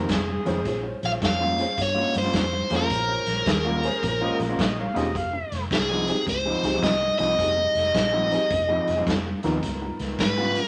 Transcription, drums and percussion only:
0.09 kick, snare, closed hi-hat
0.46 snare, closed hi-hat
0.65 kick, snare, closed hi-hat
1.03 snare, closed hi-hat
1.22 kick, snare, closed hi-hat
1.58 snare, closed hi-hat
1.78 kick, closed hi-hat
2.14 snare, closed hi-hat
2.33 kick, snare, closed hi-hat
2.70 snare, closed hi-hat
2.90 kick, closed hi-hat
3.26 snare, closed hi-hat
3.46 kick, snare, closed hi-hat
3.83 snare, closed hi-hat
4.03 kick, closed hi-hat
4.40 snare, closed hi-hat
4.59 kick, snare, closed hi-hat
4.96 snare, closed hi-hat
5.15 kick, closed hi-hat
5.52 snare, closed hi-hat
5.71 kick, snare, closed hi-hat
6.07 snare, closed hi-hat
6.27 kick, closed hi-hat
6.63 snare, closed hi-hat
6.83 kick, snare, closed hi-hat
7.19 snare, closed hi-hat
7.39 kick, snare, closed hi-hat
7.75 snare, closed hi-hat
7.94 kick, snare, closed hi-hat
8.31 snare, closed hi-hat
8.50 kick, closed hi-hat
8.88 snare, closed hi-hat
9.07 kick, snare, closed hi-hat
9.43 snare, closed hi-hat
9.63 kick, snare, closed hi-hat
9.99 snare, closed hi-hat
10.19 kick, snare, closed hi-hat
10.55 snare, closed hi-hat

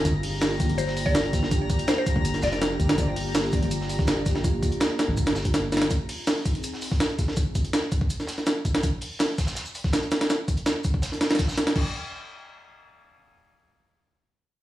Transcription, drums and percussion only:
0.05 kick, closed hi-hat, shaker
0.23 closed hi-hat, open hi-hat
0.41 snare, closed hi-hat, shaker
0.60 kick, closed hi-hat, shaker
0.69 closed hi-hat
0.78 closed hi-hat, shaker
0.87 snare
0.97 open hi-hat, shaker
1.05 kick, snare
1.15 snare, closed hi-hat, shaker
1.25 closed hi-hat
1.32 kick, snare, closed hi-hat, shaker
1.43 snare
1.51 kick, closed hi-hat, shaker
1.70 kick, closed hi-hat, shaker
1.79 closed hi-hat
1.88 snare, closed hi-hat, shaker
2.06 kick, closed hi-hat, shaker
2.16 kick
2.25 closed hi-hat, shaker
2.34 snare, closed hi-hat
2.42 snare, closed hi-hat, shaker
2.52 snare, closed hi-hat
2.62 snare, closed hi-hat, shaker
2.80 kick, closed hi-hat, shaker
2.89 snare, closed hi-hat
2.98 kick, closed hi-hat, shaker
3.16 closed hi-hat, open hi-hat
3.35 snare, closed hi-hat, shaker
3.52 kick, closed hi-hat, shaker
3.63 closed hi-hat
3.71 closed hi-hat, shaker
3.81 snare
3.89 open hi-hat, shaker
3.99 kick, snare
4.07 snare, closed hi-hat, shaker
4.17 closed hi-hat
4.26 kick, snare, closed hi-hat, shaker
4.35 snare
4.44 kick, closed hi-hat, shaker
4.63 kick, closed hi-hat, shaker
4.72 closed hi-hat
4.80 snare, closed hi-hat, shaker
4.99 snare, closed hi-hat, shaker
5.17 kick, closed hi-hat, shaker
5.26 snare, closed hi-hat
5.35 snare, shaker
5.44 kick, closed hi-hat
5.54 snare, closed hi-hat, shaker
5.72 snare, closed hi-hat, shaker
5.77 snare, closed hi-hat
5.81 snare, closed hi-hat
5.90 kick, closed hi-hat, shaker
6.09 closed hi-hat, open hi-hat
6.27 snare, closed hi-hat, shaker
6.45 kick, closed hi-hat, shaker
6.55 closed hi-hat
6.63 closed hi-hat, shaker
6.74 snare
6.81 open hi-hat, shaker
6.91 kick, snare
7.00 snare, closed hi-hat, shaker
7.10 closed hi-hat
7.18 kick, snare, closed hi-hat, shaker
7.28 snare
7.36 kick, closed hi-hat, shaker
7.55 kick, closed hi-hat, shaker
7.64 closed hi-hat
7.73 snare, closed hi-hat, shaker
7.91 kick, closed hi-hat, shaker
8.01 kick
8.10 closed hi-hat, shaker
8.20 snare, closed hi-hat
8.27 snare, closed hi-hat, shaker
8.38 snare, closed hi-hat
8.46 snare, closed hi-hat, shaker
8.65 kick, closed hi-hat, shaker
8.74 snare, closed hi-hat
8.83 kick, closed hi-hat, shaker
9.01 closed hi-hat, open hi-hat
9.19 snare, closed hi-hat, shaker
9.38 kick, snare, closed hi-hat, shaker
9.47 snare, closed hi-hat, shaker
9.55 snare, closed hi-hat, shaker
9.65 shaker
9.74 open hi-hat, shaker
9.84 kick, snare
9.93 snare, closed hi-hat, shaker
10.03 closed hi-hat
10.11 snare, closed hi-hat, shaker
10.21 snare, closed hi-hat
10.30 snare, closed hi-hat, shaker
10.48 kick, closed hi-hat, shaker
10.57 closed hi-hat
10.66 snare, closed hi-hat, shaker
10.84 kick, closed hi-hat, shaker
10.94 kick
11.02 snare, closed hi-hat, shaker
11.12 snare, closed hi-hat
11.21 snare, closed hi-hat, shaker
11.30 snare, closed hi-hat
11.35 snare, closed hi-hat, shaker
11.39 kick, snare, closed hi-hat
11.48 snare, shaker
11.52 snare, shaker
11.57 snare, closed hi-hat, shaker
11.66 snare, closed hi-hat
11.76 kick, crash

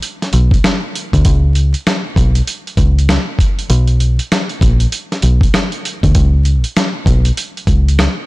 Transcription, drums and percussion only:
0.03 closed hi-hat
0.22 snare, closed hi-hat
0.33 closed hi-hat
0.51 kick, closed hi-hat
0.64 cross-stick, snare, closed hi-hat
0.95 closed hi-hat
1.13 kick, closed hi-hat
1.25 kick, closed hi-hat
1.55 closed hi-hat
1.74 closed hi-hat
1.87 cross-stick, snare, closed hi-hat
2.16 kick, closed hi-hat
2.35 closed hi-hat
2.47 closed hi-hat
2.67 closed hi-hat
2.77 kick, closed hi-hat
2.99 closed hi-hat
3.09 cross-stick, snare, closed hi-hat
3.39 kick, closed hi-hat
3.59 closed hi-hat
3.70 closed hi-hat
3.87 closed hi-hat
4.00 closed hi-hat
4.19 closed hi-hat
4.32 cross-stick, snare, closed hi-hat
4.49 closed hi-hat
4.61 kick, closed hi-hat
4.80 closed hi-hat
4.92 closed hi-hat
5.12 snare, closed hi-hat
5.22 closed hi-hat
5.41 kick, closed hi-hat
5.54 cross-stick, snare, closed hi-hat
5.72 closed hi-hat
5.85 closed hi-hat
6.03 kick, closed hi-hat
6.15 kick, closed hi-hat
6.45 closed hi-hat
6.64 closed hi-hat
6.77 cross-stick, snare, closed hi-hat
7.06 kick, closed hi-hat
7.25 closed hi-hat
7.37 closed hi-hat
7.57 closed hi-hat
7.67 kick, closed hi-hat
7.88 closed hi-hat
7.99 cross-stick, snare, closed hi-hat

